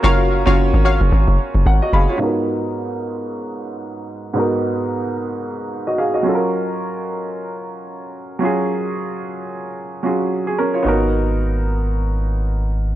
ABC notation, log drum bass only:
X:1
M:4/4
L:1/16
Q:"Swing 16ths" 1/4=111
K:G#dor
V:1 name="Log drum bass" clef=bass
F,,,3 F,,,2 G,,,2 F,,, G,,, F,,, z F,,, G,,, z F,,, z | z16 | z16 | z16 |
z16 | z16 |]